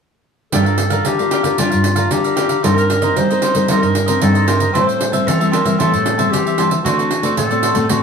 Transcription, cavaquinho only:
0.52 G4 A#4 D5 F5
0.65 A#4 D5 F5
0.77 muted cavaquinho stroke
0.90 A#4 D5 F5
1.18 A#4 D5 F5
1.31 G4 A#4 D5 F5
1.43 A#4 D5 F5
1.58 G4 A#4 D5 F5
1.70 A#4 D5 F5
1.84 muted cavaquinho stroke
1.95 A#4 D5 F5
2.24 A#4 D5 F5
2.36 G4 A#4 D5 F5
2.49 A#4 D5 F5
2.63 D#4 A#4 C5 D#5
2.77 A#4 C5 D#5
3.02 A#4 C5 D#5
3.30 A#4 C5 D#5
3.42 D#4 A#4 C5 D#5
3.54 A#4 C5 D#5
3.68 D#4 A#4 C5 D#5
3.82 A#4 C5 D#5
3.94 muted cavaquinho stroke
4.06 A#4 C5 D#5
4.34 A#4 C5 D#5
4.46 D#4 A#4 C5 D#5
4.60 A#4 C5 D#5
4.73 G4 C5 E5 A5
4.86 C5 E5 A5
5.00 muted cavaquinho stroke
5.12 C5 E5 A5
5.40 C5 E5 A5
5.51 G4 C5 E5 A5
5.64 C5 E5 A5
5.78 G4 C5 E5 A5
5.93 C5 E5 A5
6.06 muted cavaquinho stroke
6.18 C5 E5 A5
6.46 C5 E5 A5
6.57 G4 C5 E5 A5
6.70 C5 E5 A5
6.84 F#4 A4 C5 D5
6.98 A4 C5 D5
7.11 muted cavaquinho stroke
7.23 A4 C5 D5
7.51 A4 C5 D5
7.64 F#4 A4 C5 D5
7.75 A4 C5 D5
7.89 F#4 A4 C5 D5

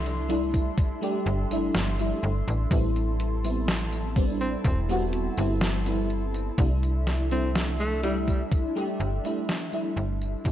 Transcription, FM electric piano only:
Already playing: G3 A3 D4 E4
0.28 G3 A3 D4 E4
1.01 G3 A3 D4 G4
1.51 G3 A3 D4 E4
1.99 G3 A3 D4 E4
2.70 G3 B3 C4 E4
3.44 G3 B3 C4 E4
4.16 G3 B3 C4 D4
4.89 G3 B3 C4 F#4
5.37 G3 B3 C4 E4
5.85 G3 B3 C4 E4
6.58 G3 A3 D4 E4
7.30 G3 A3 D4 E4
8.02 G3 A3 D4 E4
8.75 G3 A3 D4 G4
9.24 G3 A3 D4 E4
9.72 G3 A3 D4 E4
10.44 G3 B3 C4 E4

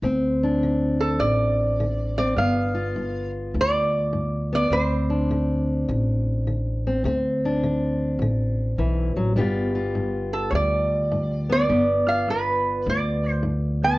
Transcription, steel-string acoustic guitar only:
0.03 D3 C4
0.43 D4
0.63 D3
1.22 D3
1.80 D3
2.18 C4
2.36 G2 B3
2.74 F4
2.96 G2
3.55 G2
4.13 G2
4.53 B3
4.72 D3 C4
5.10 D4
5.31 D3
5.88 D3
6.47 D3
6.87 C4
7.06 D3 C4
7.45 D4
7.63 D3
8.22 D3
8.79 E3
9.16 F#3
9.36 G2 G3 B3 F4 G4
9.75 F4
9.95 G2
10.52 G2
11.12 G2
11.50 B3
11.69 G2 B3
12.07 F4
12.28 G2
12.86 G2
13.43 G2
13.83 B3

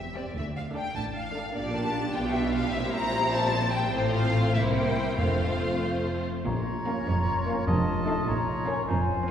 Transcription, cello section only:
Already playing: E2
0.35 D2
0.95 A2
1.55 A#2
2.15 B2
2.73 A#2
3.93 A2
4.54 C3
5.18 F2
6.46 A#2
7.07 F2
7.68 F2
8.27 A#2
8.89 F2

